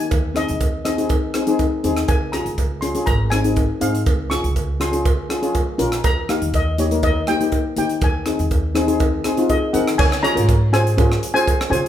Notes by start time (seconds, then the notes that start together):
Already playing: A#3 D#4 G4 G#5
0.00 closed hi-hat
0.11 D#2, kick, closed hi-hat, cowbell
0.34 C4 D#4 G#4 D#5, cross-stick, closed hi-hat
0.48 D#2, closed hi-hat
0.61 kick, closed hi-hat, cowbell
0.85 C4 D#4 G#4 D#5, cross-stick, closed hi-hat
0.98 C4 D#4 G#4, closed hi-hat
1.09 kick, closed hi-hat, cowbell
1.34 C4 D#4 G#4, cross-stick, closed hi-hat
1.47 C4 D#4 G#4, closed hi-hat
1.59 kick, closed hi-hat, cowbell
1.84 D#2 C4 D#4 G#4, closed hi-hat
1.97 cross-stick, closed hi-hat
2.08 C#2 G#5, kick, closed hi-hat, cowbell
2.32 C#4 F4 G#4 A#5, cross-stick, closed hi-hat
2.46 C#2, closed hi-hat
2.58 kick, closed hi-hat, cowbell
2.81 C#4 F4 G#4 C6, closed hi-hat
2.95 C#4 F4 G#4, closed hi-hat
3.06 G#1 A#5, kick, closed hi-hat, cowbell
3.30 C4 D#4 G#4 G#5, cross-stick, closed hi-hat
3.44 C4 D#4 G#4, closed hi-hat
3.56 kick, closed hi-hat, cowbell
3.81 G#2 C4 D#4 G#4 F5, closed hi-hat
3.95 closed hi-hat
4.06 C#2, kick, closed hi-hat, cowbell
4.30 C#4 F4 G#4 C#6, cross-stick, closed hi-hat
4.44 C#2, closed hi-hat
4.56 kick, closed hi-hat, cowbell
4.80 C#4 F4 G#4 C6, cross-stick, closed hi-hat
4.92 C#4 F4 G#4, closed hi-hat
5.05 kick, closed hi-hat, cowbell
5.29 C#4 F4 G#4, cross-stick, closed hi-hat
5.43 C#4 F4 G#4, closed hi-hat
5.55 kick, closed hi-hat, cowbell
5.78 A#1 C#4 F4 A#4, closed hi-hat
5.92 cross-stick, closed hi-hat
6.04 D#2 A#5, kick, closed hi-hat, cowbell
6.29 A#3 D#4 G4 F5, cross-stick, closed hi-hat
6.42 D#2, closed hi-hat
6.54 D#5, kick, closed hi-hat, cowbell
6.78 A#3 D#4 G4 C#5, closed hi-hat
6.91 A#3 D#4 A#4, closed hi-hat
7.03 D#5, kick, closed hi-hat, cowbell
7.27 A#3 D#4 G4 G5, cross-stick, closed hi-hat
7.41 A#3 D#4 G4, closed hi-hat
7.52 kick, closed hi-hat, cowbell
7.77 D#3 A#3 D#4 G4 G5, closed hi-hat
7.89 closed hi-hat
8.01 D#2 G#5, kick, closed hi-hat, cowbell
8.26 C4 D#4 G#4, cross-stick, closed hi-hat
8.39 D#2, closed hi-hat
8.51 kick, closed hi-hat, cowbell
8.75 C4 D#4 G#4, cross-stick, closed hi-hat
8.88 C4 D#4 G#4, closed hi-hat
9.00 kick, closed hi-hat, cowbell
9.24 C4 D#4 G#4, cross-stick, closed hi-hat
9.37 C4 D#4 F4, closed hi-hat
9.49 G#4 D#5, kick, closed hi-hat, cowbell
9.73 D#3 C4 D#4 G#4 A#4 F#5, closed hi-hat
9.88 cross-stick, closed hi-hat
9.98 C#3 C#5 G#5, kick, crash, cowbell
10.12 cross-stick
10.23 C#4 F4 G#4 C#5 A#5, closed hi-hat
10.35 G#2 C#4 F4 A#4, closed hi-hat
10.49 kick, closed hi-hat, cowbell
10.73 C#4 F4 G#4 C5 G#5, cross-stick, closed hi-hat
10.87 closed hi-hat
10.97 C#4 F4 G#4, kick, closed hi-hat, cowbell
11.12 cross-stick
11.23 closed hi-hat
11.34 C#4 F4 G#4 C5 G#5, closed hi-hat
11.48 kick, closed hi-hat, cowbell
11.61 cross-stick
11.70 C#3 C#4 F4 G#4 C5 G#5, closed hi-hat